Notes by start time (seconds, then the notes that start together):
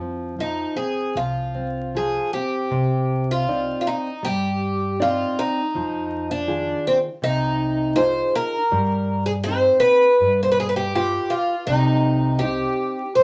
Already playing: F2 F3
0.01 C4
0.39 F3 D#4
0.76 C4 G#4
1.15 C2 F3 F4
1.55 C4
1.95 F3 G#4
2.33 C4 G4
2.71 C2 C3
3.31 F4
3.48 C4 D#4 D5
3.81 F4
3.87 D#4
4.23 G2 G3 G4
5.00 C4 D#4 F4 D5
5.39 D#4
5.75 F2 F3
6.31 D4
6.47 D#3 F4 G#4
6.87 C4
7.22 C2 C3 D#4
7.96 D#4 F4 G#4 C5
8.35 A#4
8.72 G2 G3
9.26 G#4
9.44 C4 D#4 G4 C5
9.80 B4
10.20 G2 G3
10.43 C5
10.51 B4
10.60 G#4
10.69 B4
10.76 G4
10.95 F4 G4 B4
11.30 F4
11.67 C2 C3 D#4
12.39 C4 G4
12.43 D#4
13.15 G2 G3 C5